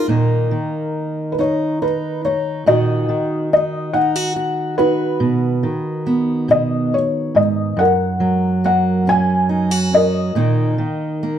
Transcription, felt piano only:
0, 0, Header, 1, 2, 480
1, 0, Start_track
1, 0, Key_signature, -6, "minor"
1, 0, Tempo, 857143
1, 47, Time_signature, 6, 3, 24, 8
1, 6377, End_track
2, 0, Start_track
2, 0, Title_t, "Felt piano"
2, 0, Program_c, 0, 0
2, 0, Note_on_c, 0, 63, 52
2, 0, Note_on_c, 0, 70, 73
2, 740, Note_on_c, 0, 71, 45
2, 752, Note_off_c, 0, 70, 0
2, 759, Note_off_c, 0, 63, 0
2, 774, Note_off_c, 0, 71, 0
2, 785, Note_on_c, 0, 73, 61
2, 1020, Note_on_c, 0, 71, 62
2, 1024, Note_off_c, 0, 73, 0
2, 1238, Note_off_c, 0, 71, 0
2, 1259, Note_on_c, 0, 73, 63
2, 1498, Note_on_c, 0, 75, 72
2, 1500, Note_off_c, 0, 73, 0
2, 1505, Note_on_c, 0, 66, 53
2, 1970, Note_off_c, 0, 75, 0
2, 1978, Note_on_c, 0, 75, 67
2, 2189, Note_off_c, 0, 66, 0
2, 2203, Note_on_c, 0, 78, 73
2, 2217, Note_off_c, 0, 75, 0
2, 2658, Note_off_c, 0, 78, 0
2, 2676, Note_on_c, 0, 71, 77
2, 2685, Note_on_c, 0, 63, 51
2, 3611, Note_off_c, 0, 71, 0
2, 3616, Note_off_c, 0, 63, 0
2, 3645, Note_on_c, 0, 75, 77
2, 3887, Note_off_c, 0, 75, 0
2, 3887, Note_on_c, 0, 73, 71
2, 4123, Note_on_c, 0, 75, 67
2, 4128, Note_off_c, 0, 73, 0
2, 4361, Note_on_c, 0, 78, 73
2, 4366, Note_off_c, 0, 75, 0
2, 4370, Note_on_c, 0, 70, 56
2, 4817, Note_off_c, 0, 78, 0
2, 4847, Note_on_c, 0, 78, 74
2, 5062, Note_off_c, 0, 70, 0
2, 5066, Note_off_c, 0, 78, 0
2, 5090, Note_on_c, 0, 80, 83
2, 5569, Note_on_c, 0, 75, 76
2, 5576, Note_on_c, 0, 70, 50
2, 5581, Note_off_c, 0, 80, 0
2, 6377, Note_off_c, 0, 70, 0
2, 6377, Note_off_c, 0, 75, 0
2, 6377, End_track
0, 0, End_of_file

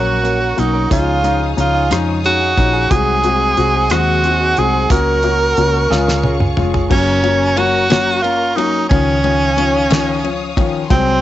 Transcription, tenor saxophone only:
0, 0, Header, 1, 2, 480
1, 0, Start_track
1, 0, Key_signature, 6, "major"
1, 0, Tempo, 665927
1, 654, Time_signature, 6, 3, 24, 8
1, 8083, End_track
2, 0, Start_track
2, 0, Title_t, "Tenor saxophone"
2, 0, Program_c, 0, 66
2, 0, Note_on_c, 0, 66, 81
2, 427, Note_on_c, 0, 63, 74
2, 438, Note_off_c, 0, 66, 0
2, 661, Note_off_c, 0, 63, 0
2, 667, Note_on_c, 0, 65, 84
2, 1113, Note_off_c, 0, 65, 0
2, 1155, Note_on_c, 0, 65, 80
2, 1412, Note_off_c, 0, 65, 0
2, 1625, Note_on_c, 0, 66, 98
2, 2095, Note_on_c, 0, 68, 96
2, 2106, Note_off_c, 0, 66, 0
2, 2816, Note_on_c, 0, 66, 96
2, 2827, Note_off_c, 0, 68, 0
2, 3305, Note_on_c, 0, 68, 100
2, 3316, Note_off_c, 0, 66, 0
2, 3538, Note_off_c, 0, 68, 0
2, 3542, Note_on_c, 0, 70, 104
2, 4711, Note_off_c, 0, 70, 0
2, 4984, Note_on_c, 0, 61, 86
2, 5460, Note_on_c, 0, 66, 100
2, 5471, Note_off_c, 0, 61, 0
2, 5928, Note_on_c, 0, 65, 102
2, 5939, Note_off_c, 0, 66, 0
2, 6172, Note_on_c, 0, 63, 91
2, 6183, Note_off_c, 0, 65, 0
2, 6407, Note_off_c, 0, 63, 0
2, 6412, Note_on_c, 0, 61, 90
2, 7584, Note_off_c, 0, 61, 0
2, 7866, Note_on_c, 0, 60, 97
2, 8083, Note_off_c, 0, 60, 0
2, 8083, End_track
0, 0, End_of_file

